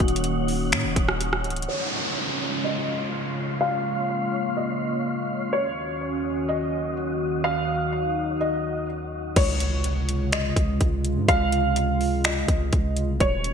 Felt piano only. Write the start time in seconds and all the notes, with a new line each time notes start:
1.68 C#5
2.64 D#5
3.61 F5
4.57 D#5
5.53 C#5
6.49 D#5
7.44 F5
8.41 D#5
9.37 C#5
10.32 D#5
11.28 F5
12.25 D#5
13.21 C#5